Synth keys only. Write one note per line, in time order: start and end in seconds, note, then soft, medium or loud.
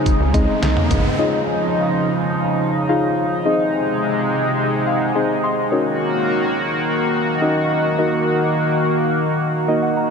0.00 0.15 C4 medium
0.00 0.15 D#4 medium
0.00 0.15 G#4 medium
0.00 0.15 C5 loud
0.34 1.03 C4 medium
0.34 1.03 D#4 medium
0.34 1.03 G#4 medium
0.34 1.03 D#5 loud
1.19 2.10 D#4 medium
1.19 2.10 F4 medium
1.19 2.10 G#4 medium
1.19 2.11 C#5 medium
1.19 2.11 D#5 medium
2.89 3.35 D#4 medium
2.89 3.35 F4 medium
2.89 3.35 G#4 medium
2.89 3.35 C#5 medium
2.89 3.35 F5 medium
3.45 4.37 C4 medium
3.45 4.37 D#4 medium
3.45 4.37 G#4 medium
3.45 4.37 C5 medium
3.45 4.37 D#5 medium
4.87 4.96 F5 medium
4.96 5.14 F#5 medium
5.15 5.61 C4 medium
5.15 5.61 D#4 medium
5.15 5.61 G#4 medium
5.15 5.61 C5 medium
5.15 5.61 D#5 loud
5.15 5.42 G#5 medium
5.43 5.70 C6 medium
5.72 6.63 C#4 medium
5.72 6.63 D#4 medium
5.72 6.63 F#4 medium
5.72 6.63 A#4 medium
5.72 6.63 C#5 medium
7.42 7.88 C#4 medium
7.42 7.88 D#4 medium
7.42 7.88 F#4 medium
7.42 7.88 A#4 medium
7.42 7.88 D#5 medium
7.99 8.90 A#3 medium
7.99 8.90 D#4 medium
7.99 8.90 F#4 medium
7.99 8.90 A#4 medium
7.99 8.90 D#5 medium
9.68 10.10 A#3 medium
9.68 10.10 D#4 medium
9.68 10.10 F#4 medium
9.68 10.10 A#4 medium
9.68 10.10 D#5 medium
9.82 9.96 F#5 medium
9.97 10.10 A#5 medium